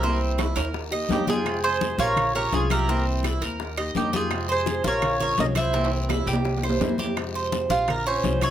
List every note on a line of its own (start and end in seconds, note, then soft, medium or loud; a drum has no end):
0.00 0.51 C2 medium
0.00 0.55 C3 medium
0.00 0.55 E3 medium
0.00 0.56 A#3 medium
0.00 0.56 C4 medium
0.00 0.38 C4 medium
0.00 0.55 E4 medium
0.00 0.18 G4 medium
0.00 0.19 A#4 medium
0.00 high bongo medium
0.00 high conga soft
0.00 long guiro medium
0.21 high bongo soft
0.21 high conga soft
0.38 0.56 E4 medium
0.38 high bongo medium
0.38 high conga medium
0.38 high timbale loud
0.38 short guiro medium
0.38 claves medium
0.56 1.06 D#2 loud
0.56 0.73 A#3 soft
0.56 0.74 C4 soft
0.56 0.73 E4 soft
0.56 0.91 A#4 medium
0.56 high bongo soft
0.56 high conga soft
0.56 high timbale medium
0.56 short guiro medium
0.73 muted nylon-string guitar stroke medium
0.73 high bongo medium
0.73 high conga soft
0.73 long guiro medium
0.91 1.10 A#3 soft
0.91 1.09 D#4 soft
0.91 1.09 G4 medium
0.91 1.27 D#5 medium
0.91 high conga soft
0.91 claves medium
1.09 1.93 F2 medium
1.09 1.27 D#3 medium
1.09 1.27 G3 medium
1.09 1.28 A#3 medium
1.09 1.27 D#4 medium
1.09 1.26 G4 medium
1.09 1.29 G4 medium
1.09 high bongo soft
1.09 low bongo medium
1.09 high conga medium
1.09 low timbale loud
1.09 short guiro medium
1.27 1.46 A#3 soft
1.27 1.45 D#4 soft
1.27 1.61 F4 medium
1.27 1.45 G4 soft
1.27 1.65 G#4 medium
1.27 1.62 G5 medium
1.27 high bongo soft
1.27 high conga medium
1.27 low timbale medium
1.27 short guiro medium
1.45 1.98 C3 medium
1.45 1.98 F3 medium
1.45 1.99 G#3 medium
1.45 1.98 C4 medium
1.45 high bongo medium
1.45 high conga soft
1.45 high timbale medium
1.45 long guiro medium
1.45 claves medium
1.63 1.96 G#4 medium
1.63 1.98 C5 medium
1.63 1.97 C5 loud
1.63 high bongo soft
1.63 high conga soft
1.81 high bongo medium
1.81 high conga loud
1.81 high timbale medium
1.81 short guiro medium
1.98 2.48 A#1 loud
1.98 2.16 G#3 soft
1.98 2.16 C4 soft
1.98 2.34 F4 medium
1.98 2.16 G4 soft
1.98 2.33 A#4 loud
1.98 2.33 C#5 loud
1.98 high bongo soft
1.98 high conga medium
1.98 short guiro medium
2.17 muted nylon-string guitar stroke medium
2.17 high bongo medium
2.17 high conga soft
2.17 low conga medium
2.17 high timbale medium
2.17 long guiro medium
2.17 claves medium
2.34 2.52 G#3 soft
2.34 2.52 C#4 soft
2.34 2.51 F4 medium
2.34 2.51 G4 medium
2.34 2.54 A#4 medium
2.34 2.70 C#5 medium
2.34 high conga soft
2.52 3.36 C2 loud
2.52 2.69 F3 medium
2.52 2.70 G#3 medium
2.52 2.70 C#4 medium
2.52 2.70 F4 medium
2.52 2.68 F4 medium
2.52 2.72 G#4 medium
2.52 high bongo soft
2.52 low bongo medium
2.52 high conga medium
2.52 high timbale medium
2.52 short guiro medium
2.69 2.88 G#3 soft
2.69 2.88 C#4 soft
2.69 2.88 E4 medium
2.69 2.87 F4 medium
2.69 3.05 G4 medium
2.69 3.04 A#4 medium
2.69 high bongo soft
2.69 high conga medium
2.69 high timbale medium
2.69 short guiro medium
2.69 claves medium
2.87 3.41 C3 medium
2.87 3.41 E3 medium
2.87 3.41 A#3 medium
2.87 3.23 C4 medium
2.87 3.42 C4 medium
2.87 3.41 E4 medium
2.87 high bongo medium
2.87 high conga soft
2.87 long guiro medium
3.05 high bongo soft
3.05 high conga soft
3.23 3.42 E4 medium
3.23 high bongo medium
3.23 high conga medium
3.23 high timbale medium
3.23 short guiro medium
3.23 claves medium
3.41 3.92 D#2 loud
3.41 3.60 A#3 soft
3.41 3.60 C4 soft
3.41 3.59 E4 medium
3.41 3.77 A#4 medium
3.41 high bongo soft
3.41 high conga soft
3.41 high timbale medium
3.41 short guiro medium
3.59 muted nylon-string guitar stroke medium
3.59 high bongo medium
3.59 high conga soft
3.59 long guiro medium
3.77 3.96 A#3 soft
3.77 3.95 D#4 soft
3.77 3.95 G4 soft
3.77 4.12 D#5 medium
3.77 high conga soft
3.77 high timbale medium
3.77 claves medium
3.95 4.79 F2 medium
3.95 4.13 D#3 medium
3.95 4.13 G3 medium
3.95 4.13 A#3 medium
3.95 4.13 D#4 medium
3.95 4.13 G4 medium
3.95 4.12 G4 medium
3.95 high bongo soft
3.95 low bongo medium
3.95 high conga medium
3.95 low timbale medium
3.95 short guiro medium
4.13 4.32 A#3 soft
4.13 4.31 D#4 soft
4.13 4.47 F4 medium
4.13 4.31 G4 medium
4.13 4.52 G#4 medium
4.13 4.48 G5 medium
4.13 high bongo soft
4.13 high conga medium
4.13 high timbale medium
4.13 short guiro medium
4.31 4.84 C3 medium
4.31 4.84 F3 medium
4.31 4.85 G#3 medium
4.31 4.85 C4 medium
4.31 high bongo medium
4.31 high conga soft
4.31 high timbale medium
4.31 long guiro medium
4.31 claves medium
4.48 4.83 G#4 medium
4.48 4.84 C5 medium
4.48 4.87 C5 medium
4.48 high bongo soft
4.48 high conga soft
4.66 high bongo medium
4.66 high conga medium
4.66 high timbale medium
4.66 short guiro medium
4.84 5.34 A#1 loud
4.84 5.01 G#3 soft
4.84 5.03 C4 soft
4.84 5.19 F4 medium
4.84 5.02 G4 medium
4.84 5.18 A#4 medium
4.84 5.20 C#5 loud
4.84 high conga loud
4.84 short guiro medium
5.02 muted nylon-string guitar stroke medium
5.02 high bongo medium
5.02 high conga soft
5.02 low conga medium
5.02 high timbale medium
5.02 long guiro medium
5.02 claves medium
5.20 5.37 G#3 soft
5.20 5.38 C#4 soft
5.20 5.38 F4 medium
5.20 5.37 A#4 medium
5.20 5.55 C#5 medium
5.20 5.38 C#5 loud
5.20 high conga soft
5.20 low conga medium
5.38 6.22 C2 medium
5.38 5.55 F3 medium
5.38 5.56 G#3 medium
5.38 5.56 C#4 medium
5.38 5.54 F4 medium
5.38 5.44 A#4 medium
5.38 5.45 D#5 loud
5.38 high bongo soft
5.38 low bongo medium
5.38 high conga medium
5.38 high timbale medium
5.38 low timbale medium
5.38 short guiro medium
5.55 5.75 G#3 soft
5.55 5.74 C#4 soft
5.55 5.73 E4 medium
5.55 5.73 F4 medium
5.55 5.90 C5 medium
5.55 5.90 E5 loud
5.55 high bongo soft
5.55 high conga medium
5.55 high timbale medium
5.55 short guiro medium
5.55 claves medium
5.73 6.27 C3 medium
5.73 6.27 E3 medium
5.73 6.26 A#3 medium
5.73 6.09 C4 medium
5.73 6.26 C4 medium
5.73 6.24 E4 medium
5.73 high bongo medium
5.73 high conga soft
5.73 high timbale medium
5.73 long guiro medium
5.85 high timbale medium
5.92 high bongo soft
5.92 high conga soft
6.09 6.27 E4 medium
6.09 high bongo medium
6.09 high conga medium
6.09 low timbale loud
6.09 short guiro medium
6.09 claves medium
6.26 6.77 C2 loud
6.26 6.43 A#3 soft
6.26 6.44 C4 soft
6.26 6.44 E4 soft
6.26 6.62 G4 medium
6.26 high bongo soft
6.26 high conga soft
6.26 short guiro medium
6.33 low timbale loud
6.44 muted nylon-string guitar stroke medium
6.44 high bongo medium
6.44 high conga soft
6.44 low timbale medium
6.44 long guiro medium
6.57 low timbale loud
6.63 6.80 A#3 soft
6.63 6.81 C4 soft
6.63 6.80 E4 medium
6.63 6.98 C5 medium
6.63 high conga soft
6.63 claves medium
6.70 low timbale medium
6.80 7.65 F2 medium
6.80 6.98 C3 medium
6.80 6.99 E3 medium
6.80 6.99 A#3 medium
6.80 6.99 C4 medium
6.80 6.97 E4 medium
6.80 high bongo soft
6.80 low bongo medium
6.80 high conga medium
6.80 low timbale loud
6.80 short guiro medium
6.98 7.17 A#3 soft
6.98 7.17 C4 soft
6.98 7.16 E4 soft
6.98 7.17 G4 medium
6.98 high bongo soft
6.98 high conga medium
6.98 short guiro medium
7.05 low timbale medium
7.16 7.70 C3 medium
7.16 7.70 F3 medium
7.16 7.71 G#3 medium
7.16 7.71 C4 medium
7.16 7.70 G4 medium
7.16 high bongo medium
7.16 high timbale medium
7.16 long guiro medium
7.16 claves medium
7.34 7.70 C5 medium
7.34 high bongo soft
7.34 high conga soft
7.52 high bongo medium
7.52 high conga loud
7.52 high timbale medium
7.52 short guiro medium
7.69 8.20 A#1 medium
7.69 7.88 G#3 soft
7.69 7.89 C4 soft
7.69 8.05 F4 medium
7.69 7.89 F4 medium
7.69 7.88 G4 medium
7.69 high conga medium
7.69 short guiro medium
7.88 8.07 A#4 medium
7.88 muted nylon-string guitar stroke medium
7.88 high bongo medium
7.88 high conga soft
7.88 low conga medium
7.88 high timbale medium
7.88 long guiro medium
7.88 claves medium
8.07 8.22 G#3 soft
8.07 8.41 C#4 medium
8.07 8.24 C#4 soft
8.07 8.24 F4 soft
8.07 8.41 C5 medium
8.07 high conga soft
8.23 8.50 C2 loud
8.23 8.41 F3 medium
8.23 8.41 G#3 medium
8.23 8.41 C#4 medium
8.23 8.40 F4 medium
8.23 high bongo soft
8.23 low bongo medium
8.23 high conga medium
8.23 high timbale medium
8.23 low timbale medium
8.23 short guiro medium
8.41 8.50 G#3 soft
8.41 8.50 C#4 soft
8.41 8.50 E4 medium
8.41 8.50 F4 medium
8.41 8.50 C#5 loud
8.41 high bongo soft
8.41 high conga medium
8.41 high timbale medium
8.41 short guiro medium
8.41 claves medium